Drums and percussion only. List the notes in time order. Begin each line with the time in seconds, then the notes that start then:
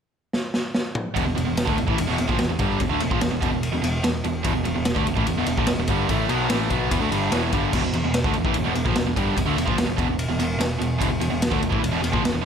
0.33 snare
0.54 snare
0.75 snare
0.95 mid tom
1.16 kick, ride
1.38 ride
1.57 snare, ride
1.67 kick
1.78 ride
1.88 kick
1.98 ride
2.18 ride
2.29 kick, snare
2.39 snare, ride
2.59 kick, ride
2.80 kick, ride
3.00 ride
3.11 kick
3.21 snare, ride
3.42 kick, ride
3.63 ride
3.84 ride
4.04 snare, ride
4.24 ride
4.44 kick, ride
4.65 ride
4.85 snare, ride
4.96 kick
5.07 ride
5.17 kick
5.27 ride
5.46 ride
5.57 kick
5.67 snare, ride
5.88 kick, ride
6.09 kick, ride
6.29 ride
6.50 snare, ride
6.70 kick, ride
6.91 kick, ride
7.12 ride
7.32 snare, ride
7.53 kick, ride
7.73 kick, crash
7.93 ride
8.14 snare, ride
8.24 kick
8.33 ride
8.45 kick
8.54 ride
8.75 ride
8.86 kick, snare
8.95 snare, ride
9.16 kick, ride
9.37 kick, ride
9.58 ride
9.68 kick
9.78 snare, ride
9.98 kick, ride
10.19 ride
10.39 ride
10.60 snare, ride
10.81 ride
11.01 kick, ride
11.21 ride
11.42 snare, ride
11.52 kick
11.63 ride
11.72 kick
11.84 ride
12.04 ride
12.13 kick
12.25 snare, ride